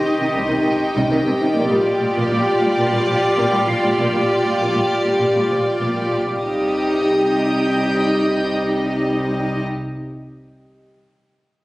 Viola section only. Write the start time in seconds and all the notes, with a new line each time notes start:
Already playing: D#4
0.19 D#3
0.34 G3
0.49 D#3
0.66 C3
0.95 G3
1.11 D#3
1.26 C3
1.42 D#3
1.58 A#3 F4
1.71 G3
2.01 G3
2.17 A#3
2.31 G3
2.62 G3
2.77 A#3
2.93 G3
3.08 F3
3.37 A#3
3.52 G3
3.67 F3
3.83 G3
4.00 A#3
4.14 G3
4.45 G3
4.60 A#3
4.75 G3
5.06 G3
5.19 A#3
5.36 G3
5.51 F3
5.81 A#3
5.97 G3
6.10 F3
6.25 G3
6.40 G3 D#4